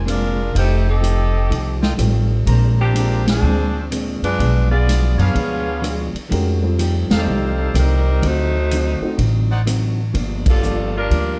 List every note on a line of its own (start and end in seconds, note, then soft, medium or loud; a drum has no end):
0.00 0.50 F1 medium
0.05 0.39 A#2 medium
0.05 0.40 G#3 medium
0.05 0.40 C4 medium
0.05 0.40 D4 medium
0.05 cross-stick soft
0.05 hi-hat pedal soft
0.05 ride medium
0.09 0.53 G#3 medium
0.09 0.53 D4 medium
0.09 0.53 F4 medium
0.09 0.53 A#4 medium
0.53 1.47 F1 medium
0.53 0.87 F3 soft
0.53 0.88 A3 soft
0.53 0.88 D#4 soft
0.53 0.76 F4 medium
0.53 0.89 G4 soft
0.53 0.76 A4 medium
0.53 0.76 D#5 medium
0.53 0.76 G5 medium
0.53 kick soft
0.53 ride medium
0.59 0.87 A3 medium
0.59 0.86 D#4 medium
0.59 0.86 G4 medium
0.59 0.86 C5 medium
0.89 1.80 C4 medium
0.89 1.80 G4 medium
0.89 1.80 A4 medium
0.89 1.80 D#5 medium
1.01 1.35 F3 medium
1.01 1.36 A3 medium
1.01 1.36 D#4 medium
1.01 1.36 G4 medium
1.01 hi-hat pedal soft
1.01 ride soft
1.50 1.96 C2 medium
1.50 1.84 F3 soft
1.50 1.84 A3 medium
1.50 1.84 D#4 medium
1.50 1.85 G4 soft
1.50 kick soft
1.50 ride soft
1.82 1.93 F4 medium
1.82 1.94 A4 medium
1.82 1.93 D#5 medium
1.82 1.94 G5 medium
1.82 snare soft
1.97 2.43 A1 medium
1.97 2.31 F3 medium
1.97 2.46 G3 soft
1.97 2.32 A3 medium
1.97 2.47 C4 soft
1.97 2.32 D#4 medium
1.97 2.46 F4 soft
1.97 2.32 G4 medium
1.97 2.47 A4 soft
1.97 cross-stick soft
1.97 hi-hat pedal soft
1.97 ride medium
2.46 3.39 A#1 medium
2.46 2.80 A#2 soft
2.46 2.81 G#3 soft
2.46 2.81 C4 soft
2.46 3.20 D4 medium
2.46 2.81 D4 soft
2.46 3.20 A#4 medium
2.46 3.20 C5 medium
2.46 3.20 A#5 medium
2.46 kick soft
2.46 ride medium
2.81 3.25 F3 medium
2.81 3.25 C4 medium
2.81 3.25 D4 medium
2.81 3.25 G4 medium
2.93 3.28 A#2 medium
2.93 3.28 G#3 medium
2.93 3.28 C4 medium
2.93 3.29 D4 medium
2.93 hi-hat pedal soft
2.93 ride medium
3.27 3.88 F3 medium
3.27 3.88 C4 medium
3.27 3.88 D4 medium
3.27 3.88 G#4 medium
3.27 snare medium
3.27 ride medium
3.42 4.18 D2 medium
3.42 3.77 A#2 soft
3.42 3.77 G#3 soft
3.42 3.77 C4 soft
3.47 3.78 D4 soft
3.91 4.24 A#2 medium
3.91 4.25 G#3 medium
3.91 4.25 C4 medium
3.91 4.26 D4 medium
3.91 cross-stick soft
3.91 hi-hat pedal soft
3.91 ride medium
4.22 4.38 F#2 medium
4.22 4.68 G#3 medium
4.22 4.68 D4 medium
4.22 4.68 F4 medium
4.22 4.68 B4 medium
4.22 ride soft
4.39 5.15 B1 medium
4.39 4.72 B2 soft
4.39 4.73 F3 soft
4.39 4.73 G#3 soft
4.39 4.74 D4 soft
4.39 kick soft
4.39 ride soft
4.71 5.16 B3 medium
4.71 5.16 F4 medium
4.71 5.16 G#4 medium
4.71 5.16 D5 medium
4.87 5.20 B2 medium
4.87 5.21 F3 medium
4.87 5.21 G#3 soft
4.87 5.21 D4 medium
4.87 snare soft
4.87 hi-hat pedal soft
4.87 ride medium
5.18 5.33 F#2 medium
5.18 6.14 B3 medium
5.18 5.80 D4 medium
5.18 6.14 F4 medium
5.18 6.14 G#4 medium
5.18 5.80 G#4 medium
5.18 5.80 B4 medium
5.18 6.14 C#5 medium
5.18 5.79 F5 medium
5.18 ride soft
5.33 6.11 D2 medium
5.33 5.67 B2 soft
5.33 5.68 F3 soft
5.33 5.68 G#3 soft
5.33 5.69 D4 medium
5.33 kick soft
5.33 ride soft
5.81 6.15 B2 medium
5.81 6.16 F3 medium
5.81 6.16 G#3 medium
5.81 6.16 D4 medium
5.81 cross-stick medium
5.81 hi-hat pedal soft
5.81 ride medium
6.14 muted upright bass stroke soft
6.14 ride soft
6.29 7.07 F2 medium
6.29 6.63 F3 soft
6.29 6.60 G#3 medium
6.29 6.64 A3 soft
6.29 6.60 C#4 soft
6.29 6.64 D#4 soft
6.29 6.60 F#4 soft
6.29 6.64 G4 medium
6.29 6.60 A#4 medium
6.29 kick soft
6.29 ride medium
6.63 7.65 G3 soft
6.63 7.65 C4 soft
6.63 7.65 F4 soft
6.63 7.65 A4 medium
6.78 7.12 F3 medium
6.78 7.12 A3 medium
6.78 7.12 D#4 medium
6.78 7.13 G4 medium
6.78 hi-hat pedal soft
6.78 ride medium
7.09 7.25 E2 medium
7.09 7.72 D#4 medium
7.09 7.72 G4 medium
7.09 7.72 A4 medium
7.09 7.71 F5 medium
7.09 snare medium
7.09 ride medium
7.17 7.74 G3 medium
7.17 7.74 C4 medium
7.17 7.74 D#4 medium
7.17 7.74 A4 medium
7.25 7.71 C2 medium
7.25 7.59 F3 soft
7.25 7.60 A3 soft
7.25 7.60 D#4 soft
7.25 7.61 G4 medium
7.74 8.19 C2 medium
7.74 8.08 F3 medium
7.74 8.08 A3 medium
7.74 8.08 D#4 medium
7.74 8.09 G4 medium
7.74 cross-stick medium
7.74 hi-hat pedal soft
7.74 ride medium
7.79 8.25 G3 medium
7.79 8.25 C4 medium
7.79 8.25 D#4 medium
7.79 8.25 A#4 medium
8.22 8.98 D2 medium
8.22 8.56 D3 soft
8.22 8.56 F#3 soft
8.22 8.57 C4 soft
8.22 8.58 D#4 soft
8.22 9.20 D#4 medium
8.22 9.20 C5 medium
8.22 kick soft
8.22 ride medium
8.26 9.21 A3 medium
8.26 9.21 F#4 medium
8.71 9.05 D3 soft
8.71 9.05 F#3 medium
8.71 9.05 C4 soft
8.71 9.05 D#4 medium
8.71 hi-hat pedal soft
8.71 ride medium
9.01 9.17 A3 medium
9.01 9.17 C4 soft
9.01 9.17 D#4 medium
9.01 9.18 F#4 medium
9.01 muted upright bass stroke soft
9.17 10.10 A1 medium
9.17 9.51 D3 medium
9.17 9.52 F#3 soft
9.17 9.53 C4 soft
9.17 9.53 D#4 medium
9.17 kick soft
9.17 ride medium
9.50 9.61 D#4 medium
9.50 9.61 C5 medium
9.50 9.61 D5 medium
9.50 9.61 F#5 medium
9.66 9.99 D3 medium
9.66 10.00 F#3 medium
9.66 10.00 C4 medium
9.66 10.00 D#4 medium
9.66 cross-stick medium
9.66 hi-hat pedal medium
9.66 ride medium
10.13 11.06 G1 medium
10.13 10.47 G2 soft
10.13 10.47 F3 soft
10.13 10.48 A#3 medium
10.13 10.49 D4 soft
10.13 kick soft
10.13 ride medium
10.46 10.93 G3 medium
10.46 10.93 D4 medium
10.46 10.93 A4 medium
10.46 kick medium
10.46 ride medium
10.50 10.93 F4 medium
10.63 10.96 G2 medium
10.63 10.96 F3 medium
10.63 10.96 A#3 medium
10.63 10.97 D4 medium
10.63 hi-hat pedal soft
10.97 11.39 G3 medium
10.97 11.39 D4 medium
10.97 11.39 F4 medium
10.97 11.39 A#4 medium
11.10 11.39 D2 medium
11.10 11.39 G2 soft
11.10 11.39 F3 soft
11.10 11.39 A#3 medium
11.10 11.39 D4 soft
11.10 kick soft
11.10 ride soft